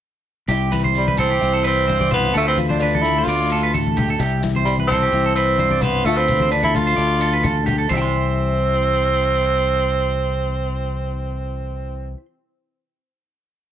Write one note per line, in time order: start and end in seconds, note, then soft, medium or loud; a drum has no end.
0.48 1.37 C2 loud
0.48 1.18 C3 medium
0.48 0.94 G3 medium
0.48 2.32 C4 medium
0.48 0.71 E4 medium
0.48 0.71 G4 medium
0.48 maracas medium
0.72 1.40 E4 medium
0.72 0.83 B4 medium
0.72 high conga medium
0.72 maracas medium
0.84 1.06 C5 medium
0.84 high conga medium
0.95 1.61 G3 medium
0.95 1.18 G3 medium
0.95 maracas medium
1.08 1.18 B4 medium
1.08 high conga medium
1.16 2.31 E3 medium
1.16 1.62 C4 medium
1.16 1.30 A4 medium
1.16 low conga medium
1.16 maracas medium
1.30 1.52 G4 medium
1.41 2.31 C2 medium
1.41 2.34 E4 medium
1.41 maracas medium
1.53 1.64 A4 medium
1.63 2.33 G3 medium
1.63 1.87 B4 medium
1.63 maracas medium
1.67 2.09 C4 medium
1.87 2.31 G2 medium
1.87 1.99 C5 medium
1.87 high conga medium
1.87 maracas medium
2.01 2.11 D5 medium
2.01 high conga medium
2.11 2.34 B3 medium
2.11 2.33 C5 medium
2.11 low conga medium
2.11 maracas medium
2.24 maracas soft
2.32 3.23 D2 loud
2.32 4.19 D3 medium
2.32 2.80 D4 medium
2.32 2.56 F4 medium
2.32 2.46 A4 medium
2.32 maracas medium
2.37 2.47 A3 medium
2.47 2.58 C4 medium
2.47 2.69 B4 medium
2.57 4.17 F4 medium
2.57 high conga medium
2.57 maracas medium
2.69 2.78 D4 medium
2.69 2.80 C5 medium
2.69 high conga medium
2.79 3.03 D4 medium
2.79 3.28 D4 medium
2.79 2.93 B4 medium
2.79 maracas medium
2.94 3.16 A4 medium
2.94 high conga medium
3.02 4.17 A3 medium
3.02 3.25 E4 medium
3.02 maracas medium
3.18 3.28 C5 medium
3.24 4.15 D2 loud
3.24 3.72 F4 loud
3.24 maracas medium
3.29 3.41 B3 medium
3.29 3.50 D5 medium
3.41 3.51 D4 soft
3.50 4.18 D4 medium
3.50 3.63 A4 medium
3.50 maracas medium
3.63 3.73 B4 medium
3.74 4.18 A2 medium
3.74 3.96 A4 medium
3.74 high conga medium
3.74 maracas medium
3.87 high conga medium
3.96 4.08 G4 medium
3.96 low conga medium
3.96 maracas medium
4.08 4.20 A4 medium
4.08 maracas soft
4.19 5.08 C2 loud
4.19 4.89 C3 medium
4.19 4.64 G3 medium
4.19 6.02 C4 medium
4.19 4.42 E4 medium
4.19 4.42 G4 medium
4.19 maracas medium
4.43 5.12 E4 medium
4.43 high conga medium
4.43 maracas loud
4.56 4.78 C5 medium
4.56 high conga medium
4.65 4.76 G3 medium
4.65 5.35 G3 medium
4.65 maracas medium
4.78 4.89 B4 medium
4.78 high conga medium
4.87 6.02 E3 medium
4.87 5.31 C4 medium
4.87 5.01 A4 medium
4.87 low conga medium
4.87 maracas medium
5.03 5.24 G4 medium
5.12 6.01 C2 loud
5.12 6.06 E4 medium
5.12 maracas medium
5.26 5.36 A4 medium
5.35 5.83 C4 medium
5.35 5.58 B4 medium
5.35 muted nylon-string guitar stroke medium
5.35 maracas medium
5.58 6.02 G2 medium
5.58 5.70 C5 medium
5.58 high conga medium
5.58 maracas medium
5.70 5.82 D5 medium
5.70 high conga medium
5.81 6.06 B3 medium
5.81 6.04 C5 medium
5.81 low conga medium
5.81 maracas medium
6.04 6.93 D2 loud
6.04 7.41 D3 medium
6.04 6.18 A3 medium
6.04 6.51 D4 medium
6.04 6.28 F4 medium
6.04 6.17 A4 medium
6.04 maracas medium
6.17 6.52 C4 medium
6.17 6.39 B4 medium
6.28 7.88 F4 medium
6.28 low conga medium
6.28 maracas medium
6.40 6.51 C5 medium
6.40 high conga medium
6.51 6.63 D4 medium
6.51 6.96 D4 medium
6.51 6.63 B4 medium
6.51 maracas medium
6.63 6.74 E4 medium
6.63 6.85 A4 medium
6.63 high conga medium
6.74 7.87 A3 medium
6.74 7.63 F4 loud
6.74 low conga medium
6.74 maracas medium
6.87 6.96 C5 medium
6.87 maracas soft
6.96 7.86 D2 loud
6.96 7.18 D4 medium
6.96 7.19 D5 medium
6.96 maracas medium
7.20 7.87 D4 medium
7.20 7.32 A4 medium
7.20 maracas medium
7.33 7.43 B4 medium
7.33 maracas soft
7.41 7.63 E3 medium
7.41 7.65 A4 medium
7.41 high conga medium
7.41 low conga medium
7.41 maracas medium
7.63 7.88 D3 medium
7.63 7.78 G4 medium
7.63 maracas medium
7.68 low conga medium
7.78 7.89 A4 medium
7.78 maracas soft
7.88 12.14 C2 medium
7.88 12.15 C3 medium
7.88 12.17 E3 medium
7.88 12.14 C4 medium
7.88 7.96 C5 medium
7.88 high conga medium
7.88 maracas medium
7.92 12.20 G3 medium
7.92 12.21 C4 medium
7.92 12.24 E4 medium
7.92 12.17 E5 medium
7.97 8.01 G5 medium
8.02 12.25 C6 medium